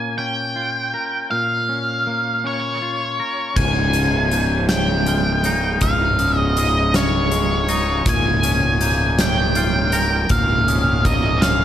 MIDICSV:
0, 0, Header, 1, 6, 480
1, 0, Start_track
1, 0, Tempo, 750000
1, 839, Time_signature, 6, 3, 24, 8
1, 7453, End_track
2, 0, Start_track
2, 0, Title_t, "Glockenspiel"
2, 0, Program_c, 0, 9
2, 2525, Note_on_c, 0, 92, 50
2, 2764, Note_off_c, 0, 92, 0
2, 2769, Note_on_c, 0, 91, 50
2, 3246, Note_off_c, 0, 91, 0
2, 3250, Note_on_c, 0, 89, 51
2, 3722, Note_off_c, 0, 89, 0
2, 3729, Note_on_c, 0, 89, 57
2, 3965, Note_off_c, 0, 89, 0
2, 3966, Note_on_c, 0, 87, 59
2, 4443, Note_off_c, 0, 87, 0
2, 4446, Note_on_c, 0, 89, 60
2, 4922, Note_off_c, 0, 89, 0
2, 4922, Note_on_c, 0, 87, 56
2, 5161, Note_off_c, 0, 87, 0
2, 5399, Note_on_c, 0, 92, 58
2, 5638, Note_off_c, 0, 92, 0
2, 5638, Note_on_c, 0, 91, 59
2, 6117, Note_off_c, 0, 91, 0
2, 6120, Note_on_c, 0, 89, 64
2, 6586, Note_off_c, 0, 89, 0
2, 6594, Note_on_c, 0, 89, 64
2, 6834, Note_off_c, 0, 89, 0
2, 6836, Note_on_c, 0, 87, 68
2, 7313, Note_on_c, 0, 89, 62
2, 7314, Note_off_c, 0, 87, 0
2, 7453, Note_off_c, 0, 89, 0
2, 7453, End_track
3, 0, Start_track
3, 0, Title_t, "Lead electric guitar"
3, 0, Program_c, 1, 29
3, 0, Note_on_c, 1, 80, 58
3, 111, Note_off_c, 1, 80, 0
3, 114, Note_on_c, 1, 79, 52
3, 833, Note_off_c, 1, 79, 0
3, 836, Note_on_c, 1, 77, 47
3, 1578, Note_on_c, 1, 73, 52
3, 1775, Note_off_c, 1, 77, 0
3, 2281, Note_on_c, 1, 80, 67
3, 2312, Note_off_c, 1, 73, 0
3, 2976, Note_off_c, 1, 80, 0
3, 3003, Note_on_c, 1, 79, 67
3, 3721, Note_off_c, 1, 79, 0
3, 3723, Note_on_c, 1, 77, 72
3, 4088, Note_off_c, 1, 77, 0
3, 4088, Note_on_c, 1, 75, 72
3, 4214, Note_off_c, 1, 75, 0
3, 4214, Note_on_c, 1, 75, 71
3, 4450, Note_off_c, 1, 75, 0
3, 4453, Note_on_c, 1, 73, 68
3, 5178, Note_on_c, 1, 80, 81
3, 5186, Note_off_c, 1, 73, 0
3, 5891, Note_off_c, 1, 80, 0
3, 5893, Note_on_c, 1, 79, 77
3, 6598, Note_off_c, 1, 79, 0
3, 6600, Note_on_c, 1, 77, 63
3, 7073, Note_on_c, 1, 75, 70
3, 7298, Note_off_c, 1, 77, 0
3, 7306, Note_on_c, 1, 77, 74
3, 7321, Note_off_c, 1, 75, 0
3, 7453, Note_off_c, 1, 77, 0
3, 7453, End_track
4, 0, Start_track
4, 0, Title_t, "Clean electric guitar"
4, 0, Program_c, 2, 27
4, 0, Note_on_c, 2, 46, 43
4, 0, Note_on_c, 2, 58, 38
4, 0, Note_on_c, 2, 61, 44
4, 115, Note_off_c, 2, 61, 0
4, 118, Note_on_c, 2, 61, 41
4, 358, Note_on_c, 2, 65, 40
4, 599, Note_off_c, 2, 46, 0
4, 601, Note_on_c, 2, 70, 43
4, 842, Note_on_c, 2, 46, 46
4, 1074, Note_off_c, 2, 61, 0
4, 1080, Note_off_c, 2, 58, 0
4, 1082, Note_on_c, 2, 61, 46
4, 1323, Note_on_c, 2, 58, 41
4, 1554, Note_off_c, 2, 61, 0
4, 1561, Note_on_c, 2, 61, 44
4, 1562, Note_off_c, 2, 65, 0
4, 1803, Note_off_c, 2, 70, 0
4, 1805, Note_on_c, 2, 65, 46
4, 2043, Note_off_c, 2, 46, 0
4, 2045, Note_on_c, 2, 70, 45
4, 2283, Note_off_c, 2, 61, 0
4, 2284, Note_off_c, 2, 58, 0
4, 2284, Note_off_c, 2, 65, 0
4, 2284, Note_off_c, 2, 70, 0
4, 2286, Note_on_c, 2, 37, 53
4, 2526, Note_on_c, 2, 49, 52
4, 2766, Note_on_c, 2, 44, 46
4, 3002, Note_off_c, 2, 49, 0
4, 3005, Note_on_c, 2, 49, 56
4, 3247, Note_on_c, 2, 56, 52
4, 3490, Note_on_c, 2, 63, 57
4, 3509, Note_off_c, 2, 37, 0
4, 3730, Note_on_c, 2, 37, 51
4, 3963, Note_off_c, 2, 44, 0
4, 3966, Note_off_c, 2, 49, 0
4, 3969, Note_on_c, 2, 49, 53
4, 4204, Note_on_c, 2, 44, 51
4, 4438, Note_off_c, 2, 49, 0
4, 4440, Note_on_c, 2, 49, 60
4, 4680, Note_off_c, 2, 56, 0
4, 4682, Note_on_c, 2, 56, 59
4, 4684, Note_off_c, 2, 63, 0
4, 4920, Note_on_c, 2, 63, 59
4, 4939, Note_off_c, 2, 37, 0
4, 5158, Note_on_c, 2, 46, 60
4, 5159, Note_off_c, 2, 63, 0
4, 5161, Note_off_c, 2, 44, 0
4, 5177, Note_off_c, 2, 56, 0
4, 5402, Note_on_c, 2, 61, 55
4, 5639, Note_off_c, 2, 49, 0
4, 5642, Note_on_c, 2, 58, 49
4, 5872, Note_off_c, 2, 61, 0
4, 5880, Note_on_c, 2, 61, 55
4, 6119, Note_on_c, 2, 65, 52
4, 6354, Note_on_c, 2, 70, 65
4, 6356, Note_off_c, 2, 46, 0
4, 6594, Note_on_c, 2, 46, 61
4, 6827, Note_off_c, 2, 61, 0
4, 6835, Note_on_c, 2, 61, 58
4, 6837, Note_off_c, 2, 58, 0
4, 7071, Note_on_c, 2, 58, 55
4, 7307, Note_off_c, 2, 61, 0
4, 7315, Note_off_c, 2, 65, 0
4, 7315, Note_on_c, 2, 61, 58
4, 7453, Note_off_c, 2, 46, 0
4, 7453, Note_off_c, 2, 58, 0
4, 7453, Note_off_c, 2, 61, 0
4, 7453, Note_off_c, 2, 70, 0
4, 7453, End_track
5, 0, Start_track
5, 0, Title_t, "Fingered electric bass"
5, 0, Program_c, 3, 33
5, 2282, Note_on_c, 3, 25, 45
5, 3696, Note_off_c, 3, 25, 0
5, 3725, Note_on_c, 3, 25, 50
5, 5135, Note_off_c, 3, 25, 0
5, 5156, Note_on_c, 3, 25, 53
5, 6568, Note_off_c, 3, 25, 0
5, 6591, Note_on_c, 3, 25, 61
5, 7453, Note_off_c, 3, 25, 0
5, 7453, End_track
6, 0, Start_track
6, 0, Title_t, "Drums"
6, 2282, Note_on_c, 9, 36, 77
6, 2282, Note_on_c, 9, 49, 73
6, 2346, Note_off_c, 9, 36, 0
6, 2346, Note_off_c, 9, 49, 0
6, 2518, Note_on_c, 9, 42, 48
6, 2582, Note_off_c, 9, 42, 0
6, 2762, Note_on_c, 9, 42, 46
6, 2826, Note_off_c, 9, 42, 0
6, 3000, Note_on_c, 9, 38, 80
6, 3000, Note_on_c, 9, 42, 51
6, 3064, Note_off_c, 9, 38, 0
6, 3064, Note_off_c, 9, 42, 0
6, 3242, Note_on_c, 9, 42, 45
6, 3306, Note_off_c, 9, 42, 0
6, 3481, Note_on_c, 9, 42, 39
6, 3545, Note_off_c, 9, 42, 0
6, 3718, Note_on_c, 9, 42, 60
6, 3722, Note_on_c, 9, 36, 83
6, 3782, Note_off_c, 9, 42, 0
6, 3786, Note_off_c, 9, 36, 0
6, 3961, Note_on_c, 9, 42, 44
6, 4025, Note_off_c, 9, 42, 0
6, 4203, Note_on_c, 9, 42, 49
6, 4267, Note_off_c, 9, 42, 0
6, 4443, Note_on_c, 9, 38, 78
6, 4443, Note_on_c, 9, 42, 63
6, 4507, Note_off_c, 9, 38, 0
6, 4507, Note_off_c, 9, 42, 0
6, 4682, Note_on_c, 9, 42, 48
6, 4746, Note_off_c, 9, 42, 0
6, 4919, Note_on_c, 9, 42, 48
6, 4983, Note_off_c, 9, 42, 0
6, 5157, Note_on_c, 9, 42, 70
6, 5158, Note_on_c, 9, 36, 84
6, 5221, Note_off_c, 9, 42, 0
6, 5222, Note_off_c, 9, 36, 0
6, 5398, Note_on_c, 9, 42, 51
6, 5462, Note_off_c, 9, 42, 0
6, 5636, Note_on_c, 9, 42, 52
6, 5700, Note_off_c, 9, 42, 0
6, 5879, Note_on_c, 9, 38, 82
6, 5879, Note_on_c, 9, 42, 70
6, 5943, Note_off_c, 9, 38, 0
6, 5943, Note_off_c, 9, 42, 0
6, 6114, Note_on_c, 9, 42, 53
6, 6178, Note_off_c, 9, 42, 0
6, 6350, Note_on_c, 9, 42, 47
6, 6414, Note_off_c, 9, 42, 0
6, 6588, Note_on_c, 9, 42, 68
6, 6593, Note_on_c, 9, 36, 94
6, 6652, Note_off_c, 9, 42, 0
6, 6657, Note_off_c, 9, 36, 0
6, 6836, Note_on_c, 9, 42, 50
6, 6900, Note_off_c, 9, 42, 0
6, 7072, Note_on_c, 9, 42, 52
6, 7073, Note_on_c, 9, 36, 68
6, 7136, Note_off_c, 9, 42, 0
6, 7137, Note_off_c, 9, 36, 0
6, 7309, Note_on_c, 9, 38, 86
6, 7309, Note_on_c, 9, 42, 59
6, 7373, Note_off_c, 9, 38, 0
6, 7373, Note_off_c, 9, 42, 0
6, 7453, End_track
0, 0, End_of_file